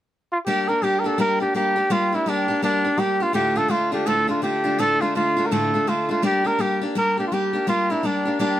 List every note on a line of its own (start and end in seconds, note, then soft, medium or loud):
0.32 0.38 F4 medium
0.46 0.69 G3 medium
0.46 0.69 A#3 medium
0.46 0.68 D4 medium
0.46 0.70 G4 medium
0.46 0.67 G4 medium
0.68 0.82 A#3 soft
0.68 0.83 D4 soft
0.68 0.82 G4 soft
0.68 0.84 A#4 medium
0.82 1.04 G3 soft
0.82 1.05 A#3 medium
0.82 1.04 D4 medium
0.82 1.01 G4 medium
0.82 1.03 G4 medium
0.99 1.08 A#4 medium
1.04 1.18 A#3 soft
1.04 1.18 D4 medium
1.04 1.18 G4 soft
1.04 1.19 A4 medium
1.18 1.40 G3 medium
1.18 1.41 A#3 medium
1.18 1.40 D4 medium
1.18 1.39 G4 medium
1.18 1.40 A#4 loud
1.40 1.54 A#3 soft
1.40 1.55 D4 soft
1.40 1.54 G4 soft
1.40 1.54 G4 medium
1.54 1.77 G3 medium
1.54 1.77 A#3 medium
1.54 1.76 D4 medium
1.54 1.93 G4 medium
1.54 1.75 G4 medium
1.76 1.90 A#3 soft
1.76 1.90 D4 soft
1.76 1.90 G4 medium
1.90 2.13 G3 medium
1.90 2.13 A#3 medium
1.90 2.13 D4 medium
1.90 2.16 F4 medium
1.90 2.11 G4 medium
2.13 2.26 A#3 soft
2.13 2.26 D4 soft
2.13 2.30 E4 medium
2.13 2.27 G4 soft
2.26 2.49 G3 medium
2.26 2.49 A#3 medium
2.26 2.49 D4 medium
2.26 2.64 D4 medium
2.26 2.47 G4 medium
2.48 2.62 A#3 soft
2.48 2.63 D4 soft
2.48 2.62 G4 soft
2.62 2.85 G3 medium
2.62 2.85 A#3 medium
2.62 2.84 D4 medium
2.62 3.01 D4 medium
2.62 2.83 G4 medium
2.84 2.97 A#3 soft
2.84 2.98 D4 soft
2.84 2.99 G4 soft
2.98 3.20 G3 medium
2.98 3.21 A#3 medium
2.98 3.20 D4 medium
2.98 3.23 G4 medium
2.98 3.19 G4 medium
3.20 3.34 A#3 soft
3.20 3.34 D4 soft
3.20 3.34 F4 medium
3.20 3.34 G4 soft
3.33 3.56 D2 medium
3.33 3.57 A2 medium
3.33 3.57 D3 medium
3.33 3.56 A3 medium
3.33 3.55 D4 medium
3.33 3.54 F4 medium
3.33 3.59 G4 loud
3.56 3.67 D3 soft
3.56 3.68 A3 soft
3.56 3.69 D4 soft
3.56 3.70 F4 medium
3.56 3.72 A4 medium
3.68 3.92 D3 medium
3.68 3.92 A3 medium
3.68 3.91 D4 medium
3.68 3.93 F4 medium
3.68 3.90 F4 medium
3.92 4.05 D3 soft
3.92 4.06 A3 soft
3.92 4.06 D4 soft
3.92 4.06 F4 medium
3.92 4.08 G4 medium
4.06 4.29 D2 medium
4.06 4.29 A2 medium
4.06 4.29 D3 medium
4.06 4.28 A3 medium
4.06 4.27 D4 medium
4.06 4.26 F4 medium
4.06 4.29 A4 loud
4.28 4.41 D3 soft
4.28 4.42 A3 soft
4.28 4.42 D4 soft
4.28 4.42 F4 soft
4.28 4.42 F4 medium
4.42 4.65 D3 medium
4.42 4.64 A3 medium
4.42 4.63 D4 medium
4.42 4.62 F4 medium
4.42 4.81 G4 medium
4.64 4.78 D3 soft
4.64 4.78 A3 soft
4.64 4.79 D4 soft
4.64 4.78 F4 medium
4.78 5.01 D2 medium
4.78 5.01 A2 medium
4.78 5.01 D3 medium
4.78 5.01 A3 medium
4.78 5.01 D4 medium
4.78 5.00 F4 medium
4.78 5.02 A4 loud
5.01 5.14 D3 soft
5.01 5.15 A3 soft
5.01 5.16 D4 soft
5.01 5.15 F4 soft
5.01 5.15 F4 medium
5.15 5.38 D3 medium
5.15 5.37 A3 medium
5.15 5.37 D4 medium
5.15 5.48 F4 medium
5.15 5.35 F4 medium
5.37 5.51 D3 soft
5.37 5.51 A3 soft
5.37 5.52 D4 soft
5.37 5.51 F4 medium
5.46 5.54 A#4 medium
5.51 5.74 D2 medium
5.51 5.74 A2 medium
5.51 5.74 D3 medium
5.51 5.74 A3 medium
5.51 5.73 D4 medium
5.51 5.73 F4 medium
5.51 5.90 A4 medium
5.74 5.86 D3 soft
5.74 5.87 A3 soft
5.74 5.87 D4 soft
5.74 5.88 F4 soft
5.87 6.10 D3 medium
5.87 6.09 A3 medium
5.87 6.08 D4 medium
5.87 6.10 F4 medium
5.87 6.07 F4 medium
6.09 6.22 D3 soft
6.09 6.23 A3 soft
6.09 6.22 D4 soft
6.09 6.23 F4 soft
6.09 6.24 F4 medium
6.22 6.45 G3 medium
6.22 6.46 A#3 medium
6.22 6.44 D4 medium
6.22 6.43 G4 medium
6.22 6.48 G4 medium
6.44 6.58 A#3 soft
6.44 6.59 D4 soft
6.44 6.59 G4 soft
6.44 6.62 A#4 medium
6.59 6.81 G3 medium
6.59 6.82 A#3 medium
6.59 6.82 D4 medium
6.59 6.82 G4 medium
6.59 6.80 G4 medium
6.81 6.95 A#3 soft
6.81 6.95 D4 soft
6.81 6.95 G4 medium
6.95 7.18 G3 medium
6.95 7.18 A#3 medium
6.95 7.18 D4 medium
6.95 7.16 G4 medium
6.95 7.17 A#4 medium
7.17 7.31 A#3 soft
7.17 7.32 D4 soft
7.17 7.31 G4 soft
7.17 7.27 G4 medium
7.27 7.34 F4 medium
7.32 7.54 G3 medium
7.32 7.54 A#3 medium
7.32 7.53 D4 medium
7.32 7.68 G4 medium
7.32 7.52 G4 medium
7.53 7.66 A#3 soft
7.53 7.67 D4 soft
7.53 7.67 G4 soft
7.67 7.89 G3 medium
7.67 7.90 A#3 medium
7.67 7.90 D4 medium
7.67 7.93 F4 medium
7.67 7.89 G4 medium
7.90 8.03 A#3 soft
7.90 8.04 D4 soft
7.90 8.07 E4 medium
7.90 8.04 G4 medium
8.03 8.26 G3 medium
8.03 8.26 A#3 medium
8.03 8.26 D4 medium
8.03 8.40 D4 medium
8.03 8.24 G4 medium
8.25 8.39 A#3 soft
8.25 8.39 D4 soft
8.25 8.39 G4 soft
8.39 8.60 G3 medium
8.39 8.60 A#3 medium
8.39 8.60 D4 medium
8.39 8.60 G4 medium